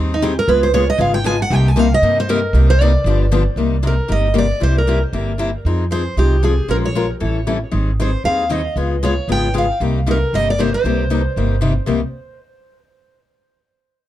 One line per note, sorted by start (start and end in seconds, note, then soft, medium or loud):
0.00 0.37 D#2 medium
0.00 0.14 D#3 medium
0.00 0.14 G3 medium
0.00 0.14 C4 medium
0.00 0.15 D#4 medium
0.00 0.15 G#4 medium
0.14 0.23 D#4 medium
0.22 0.32 D#3 medium
0.22 0.32 G3 medium
0.22 0.32 C4 medium
0.22 0.32 D#4 medium
0.22 0.37 G4 medium
0.22 0.33 G#4 loud
0.39 0.48 A#4 loud
0.48 0.89 C#2 medium
0.48 0.66 C#3 medium
0.48 0.66 G#3 medium
0.48 0.67 B3 medium
0.48 0.67 F4 medium
0.48 0.67 G#4 medium
0.48 0.62 B4 medium
0.63 0.73 C5 medium
0.74 0.84 C#3 loud
0.74 0.84 G#3 loud
0.74 0.84 B3 medium
0.74 0.84 F4 loud
0.74 0.84 G#4 medium
0.74 0.88 C#5 medium
0.90 1.00 D#5 loud
0.98 1.40 G#1 medium
0.98 1.17 C#3 medium
0.98 1.17 G#3 medium
0.98 1.17 B3 medium
0.98 1.17 F4 medium
0.98 1.17 G#4 medium
0.98 1.14 F5 medium
1.14 1.25 G5 loud
1.24 1.35 C#3 loud
1.24 1.35 G#3 loud
1.24 1.35 B3 medium
1.24 1.36 F4 loud
1.24 1.36 G#4 loud
1.24 1.40 G#5 loud
1.42 1.53 F#5 loud
1.50 1.92 C2 loud
1.50 1.69 C3 medium
1.50 1.69 G3 medium
1.50 1.69 A#3 medium
1.50 1.69 D#4 medium
1.50 1.70 G4 medium
1.50 1.68 G5 medium
1.68 1.79 G#5 loud
1.76 1.87 C3 medium
1.76 1.87 G3 medium
1.76 1.87 A#3 loud
1.76 1.87 D#4 loud
1.76 1.87 G4 loud
1.76 1.92 F5 medium
1.94 2.17 D#5 loud
2.02 2.44 G2 medium
2.02 2.21 C3 medium
2.02 2.21 G3 medium
2.02 2.21 A#3 medium
2.02 2.21 D#4 medium
2.02 2.21 G4 medium
2.20 2.29 C5 loud
2.29 2.39 C3 loud
2.29 2.39 G3 medium
2.29 2.39 A#3 loud
2.29 2.39 D#4 loud
2.29 2.39 G4 loud
2.29 2.67 A#4 medium
2.53 2.95 C2 loud
2.53 2.73 C3 medium
2.53 2.73 G3 medium
2.53 2.73 A#3 medium
2.53 2.73 D#4 medium
2.53 2.73 G4 medium
2.70 2.81 C5 loud
2.81 2.91 C3 loud
2.81 2.91 G3 loud
2.81 2.91 A#3 loud
2.81 2.91 D#4 loud
2.81 2.91 G4 loud
2.81 3.21 D5 loud
3.04 3.46 G1 loud
3.04 3.24 D3 medium
3.04 3.25 F3 medium
3.04 3.24 B3 medium
3.04 3.25 D4 medium
3.04 3.25 G4 medium
3.32 3.42 D3 loud
3.32 3.42 F3 loud
3.32 3.42 B3 loud
3.32 3.42 D4 loud
3.32 3.42 G4 loud
3.56 3.98 C2 medium
3.56 3.76 C3 medium
3.56 3.76 G3 medium
3.56 3.76 A#3 medium
3.56 3.76 D#4 medium
3.56 3.76 G4 medium
3.83 3.93 C3 medium
3.83 3.94 G3 medium
3.83 3.93 A#3 medium
3.83 3.94 D#4 medium
3.83 3.94 G4 medium
3.87 4.12 A#4 medium
4.08 4.51 G1 medium
4.08 4.27 C3 medium
4.08 4.27 G3 medium
4.08 4.27 A#3 medium
4.08 4.28 D#4 medium
4.08 4.27 G4 medium
4.08 4.37 D#5 medium
4.34 4.45 C3 medium
4.34 4.45 G3 medium
4.34 4.45 A#3 medium
4.34 4.45 D#4 medium
4.34 4.45 G4 medium
4.38 4.61 D5 medium
4.60 5.03 C2 medium
4.60 4.79 C3 medium
4.60 4.80 G3 medium
4.60 4.79 A#3 medium
4.60 4.79 E4 medium
4.60 4.79 G4 medium
4.60 4.77 C5 medium
4.78 5.01 A#4 medium
4.87 4.97 C3 medium
4.87 4.98 G3 medium
4.87 4.98 A#3 medium
4.87 4.98 E4 medium
4.87 4.98 G4 loud
5.13 5.54 G1 medium
5.13 5.31 C3 medium
5.13 5.31 G3 medium
5.13 5.31 A#3 medium
5.13 5.32 E4 medium
5.13 5.32 G4 medium
5.38 5.49 C3 medium
5.38 5.49 G3 medium
5.38 5.49 A#3 medium
5.38 5.49 E4 medium
5.38 5.49 G4 loud
5.65 6.06 F2 medium
5.65 5.84 F3 medium
5.65 5.84 C4 medium
5.65 5.84 D#4 medium
5.65 5.84 G#4 medium
5.91 6.01 F3 medium
5.91 6.02 C4 medium
5.91 6.02 D#4 medium
5.91 6.02 G#4 loud
5.91 6.15 C5 medium
6.17 6.58 C2 medium
6.17 6.35 F3 medium
6.17 6.35 C4 medium
6.17 6.36 D#4 medium
6.17 6.44 G4 medium
6.17 6.36 G#4 medium
6.43 6.53 F3 medium
6.43 6.53 C4 medium
6.43 6.53 D#4 medium
6.43 6.53 G#4 medium
6.43 6.68 G#4 medium
6.68 7.10 A#1 medium
6.68 6.87 F3 medium
6.68 6.87 G#3 medium
6.68 6.87 C#4 medium
6.68 6.87 F4 medium
6.68 6.88 A#4 medium
6.68 6.76 A#4 loud
6.85 7.09 C#5 medium
6.95 7.05 F3 medium
6.95 7.05 G#3 medium
6.95 7.06 C#4 medium
6.95 7.06 F4 medium
6.95 7.06 A#4 loud
7.20 7.63 A1 medium
7.20 7.39 E3 medium
7.20 7.39 G3 medium
7.20 7.39 C#4 medium
7.20 7.39 E4 medium
7.20 7.39 A4 medium
7.47 7.57 E3 medium
7.47 7.57 G3 medium
7.47 7.57 C#4 medium
7.47 7.57 E4 medium
7.47 7.57 A4 medium
7.71 8.14 G#1 medium
7.71 7.90 D#3 medium
7.71 7.90 G3 medium
7.71 7.90 C4 medium
7.71 7.90 D#4 medium
7.71 7.91 G#4 medium
8.00 8.09 D#3 medium
8.00 8.09 G3 medium
8.00 8.10 C4 medium
8.00 8.09 D#4 medium
8.00 8.10 G#4 loud
8.00 8.25 C5 medium
8.24 8.66 D#2 medium
8.24 8.43 D#3 medium
8.24 8.43 G3 medium
8.24 8.44 C4 medium
8.24 8.44 D#4 medium
8.24 8.44 G#4 medium
8.24 8.51 F5 medium
8.49 8.60 D#3 medium
8.49 8.60 G3 medium
8.49 8.61 C4 medium
8.49 8.61 D#4 loud
8.49 8.61 G#4 medium
8.49 8.75 D#5 medium
8.76 9.18 C#2 medium
8.76 8.95 C#3 medium
8.76 8.95 G#3 medium
8.76 8.95 B3 medium
8.76 8.95 F4 medium
8.76 8.95 G#4 medium
9.03 9.13 C#3 medium
9.03 9.13 G#3 medium
9.03 9.13 B3 medium
9.03 9.13 F4 medium
9.03 9.13 G#4 loud
9.03 9.28 C#5 medium
9.28 9.69 G#1 medium
9.28 9.47 C#3 medium
9.28 9.47 G#3 medium
9.28 9.47 B3 medium
9.28 9.47 F4 medium
9.28 9.47 G#4 medium
9.32 9.54 G5 loud
9.54 9.64 C#3 medium
9.54 9.64 G#3 medium
9.54 9.65 B3 medium
9.54 9.65 F4 medium
9.54 9.65 G#4 loud
9.58 9.80 F5 medium
9.80 10.22 C2 medium
9.80 9.99 C3 medium
9.80 9.99 G3 medium
9.80 9.99 A#3 medium
9.80 9.99 D#4 medium
9.80 9.99 G4 medium
10.06 10.17 C3 medium
10.06 10.17 G3 medium
10.06 10.17 A#3 medium
10.06 10.17 D#4 medium
10.06 10.17 G4 medium
10.11 10.33 A#4 medium
10.33 10.74 G1 medium
10.33 10.51 C3 medium
10.33 10.52 G3 medium
10.33 10.51 A#3 medium
10.33 10.51 D#4 medium
10.33 10.52 G4 medium
10.33 10.48 D#5 loud
10.50 10.60 D5 medium
10.59 10.69 C3 medium
10.59 10.69 G3 medium
10.59 10.69 A#3 medium
10.59 10.69 D#4 medium
10.59 10.69 G4 loud
10.59 10.73 C5 medium
10.74 11.59 C5 medium
10.84 11.26 C2 medium
10.84 11.03 C3 medium
10.84 11.03 G3 medium
10.84 11.03 A#3 medium
10.84 11.03 D#4 medium
10.84 11.03 G4 medium
11.10 11.21 C3 medium
11.10 11.21 G3 medium
11.10 11.21 A#3 medium
11.10 11.21 D#4 medium
11.10 11.21 G4 medium
11.36 11.78 G1 medium
11.36 11.55 C3 medium
11.36 11.55 G3 medium
11.36 11.55 A#3 medium
11.36 11.55 D#4 medium
11.36 11.55 G4 medium
11.61 11.72 C3 medium
11.61 11.72 G3 medium
11.61 11.72 A#3 medium
11.61 11.72 D#4 medium
11.61 11.72 G4 loud
11.86 12.02 C2 medium
11.86 11.99 C3 medium
11.86 11.99 G3 medium
11.86 12.00 A#3 medium
11.86 12.00 D#4 medium
11.86 12.00 G4 medium